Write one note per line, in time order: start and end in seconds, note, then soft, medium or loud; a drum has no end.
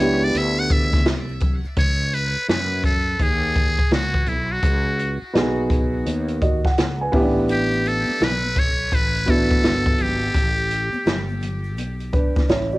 0.00 0.33 C#2 medium
0.00 1.00 B3 medium
0.00 1.01 D4 medium
0.00 1.01 E4 medium
0.00 1.02 G4 medium
0.00 0.25 C#5 medium
0.21 0.38 D5 loud
0.21 shaker soft
0.34 1.06 D2 loud
0.34 0.61 E5 loud
0.34 closed hi-hat medium
0.34 shaker medium
0.57 0.74 F#5 loud
0.57 shaker medium
0.69 1.07 E5 medium
0.69 kick loud
0.69 closed hi-hat medium
0.69 shaker soft
0.92 kick loud
0.92 snare soft
0.92 high conga medium
0.92 shaker medium
1.05 1.62 C2 medium
1.05 snare loud
1.05 closed hi-hat medium
1.05 shaker medium
1.28 shaker soft
1.40 kick medium
1.40 closed hi-hat medium
1.40 low conga medium
1.40 shaker soft
1.64 muted fretless electric bass stroke soft
1.64 shaker soft
1.77 2.33 C#2 medium
1.77 2.16 C#5 loud
1.77 kick loud
1.77 closed hi-hat medium
2.13 2.49 B4 loud
2.13 closed hi-hat medium
2.36 muted fretless electric bass stroke soft
2.48 3.16 F#2 medium
2.48 2.82 B4 loud
2.48 snare loud
2.48 closed hi-hat medium
2.84 3.24 A4 medium
2.84 kick loud
2.84 closed hi-hat medium
3.20 3.76 D#2 medium
3.20 3.93 G#4 medium
3.20 kick medium
3.20 closed hi-hat medium
3.56 kick loud
3.56 closed hi-hat medium
3.79 kick medium
3.91 4.25 C#2 medium
3.91 4.30 F#4 medium
3.91 snare loud
3.91 closed hi-hat medium
4.14 kick medium
4.26 4.61 B1 medium
4.26 4.54 E4 medium
4.26 closed hi-hat medium
4.52 5.23 F#4 medium
4.63 5.19 C#2 loud
4.63 kick loud
4.63 closed hi-hat medium
4.99 closed hi-hat medium
5.34 6.03 B1 medium
5.34 6.36 B3 medium
5.34 6.37 D#4 medium
5.34 6.06 F#4 medium
5.34 6.07 G#4 medium
5.34 snare loud
5.34 closed hi-hat medium
5.70 kick medium
5.70 closed hi-hat medium
6.06 6.62 D#2 medium
6.06 closed hi-hat medium
6.28 closed hi-hat soft
6.42 6.64 F#4 medium
6.42 6.64 D#5 medium
6.42 kick medium
6.42 closed hi-hat medium
6.65 6.99 F#5 medium
6.65 muted fretless electric bass stroke soft
6.65 kick medium
6.65 snare soft
6.78 7.12 C#2 medium
6.78 snare loud
6.78 closed hi-hat medium
7.01 7.35 B4 medium
7.01 7.35 G#5 medium
7.12 8.04 A1 medium
7.12 8.29 B3 loud
7.12 7.21 C#4 medium
7.12 8.30 E4 medium
7.12 8.30 G4 loud
7.12 kick loud
7.12 open hi-hat soft
7.20 8.33 D4 medium
7.49 7.89 G4 loud
7.49 closed hi-hat medium
7.49 shaker medium
7.72 shaker soft
7.84 8.25 A4 loud
7.84 closed hi-hat medium
7.84 shaker medium
8.06 muted fretless electric bass stroke soft
8.06 high conga medium
8.06 shaker soft
8.20 8.88 B1 medium
8.20 snare loud
8.20 closed hi-hat medium
8.20 low conga medium
8.20 shaker medium
8.24 8.60 B4 loud
8.42 high conga medium
8.42 shaker soft
8.56 8.96 C#5 loud
8.56 kick medium
8.56 closed hi-hat medium
8.56 high conga soft
8.56 low conga medium
8.56 shaker soft
8.78 shaker soft
8.91 9.60 A1 medium
8.91 9.32 B4 loud
8.91 kick medium
8.91 closed hi-hat medium
8.91 shaker medium
9.14 closed hi-hat soft
9.14 shaker soft
9.26 10.29 B3 medium
9.26 10.29 D4 medium
9.26 10.30 E4 medium
9.26 10.30 F#4 medium
9.26 kick medium
9.26 closed hi-hat medium
9.26 shaker soft
9.30 10.03 A4 loud
9.50 kick medium
9.50 high conga medium
9.50 shaker medium
9.63 9.97 G1 medium
9.63 snare loud
9.63 closed hi-hat medium
9.63 shaker medium
9.86 kick medium
9.86 shaker soft
9.98 10.33 G#1 medium
9.98 11.43 G4 medium
9.98 closed hi-hat medium
9.98 low conga medium
9.98 shaker soft
10.22 shaker soft
10.34 10.90 A1 loud
10.34 kick loud
10.34 closed hi-hat medium
10.34 shaker medium
10.57 shaker soft
10.70 closed hi-hat medium
10.70 shaker soft
10.93 high conga medium
10.93 shaker soft
11.06 11.77 G1 medium
11.06 snare loud
11.06 closed hi-hat medium
11.06 low conga medium
11.06 shaker medium
11.28 high conga medium
11.28 shaker soft
11.41 closed hi-hat medium
11.41 high conga soft
11.41 low conga medium
11.41 shaker soft
11.64 shaker soft
11.77 12.33 B1 medium
11.77 closed hi-hat medium
11.77 high conga soft
11.77 shaker medium
12.00 closed hi-hat soft
12.00 shaker soft
12.12 12.47 D4 soft
12.12 12.47 B4 medium
12.12 kick loud
12.12 closed hi-hat medium
12.12 shaker soft
12.36 muted fretless electric bass stroke soft
12.36 kick medium
12.36 snare soft
12.36 high conga medium
12.36 shaker medium
12.49 12.78 A1 medium
12.49 12.71 E4 medium
12.49 12.71 C#5 medium
12.49 snare loud
12.49 closed hi-hat medium
12.49 shaker medium
12.71 12.78 F#4 medium
12.71 12.78 D5 medium
12.71 shaker soft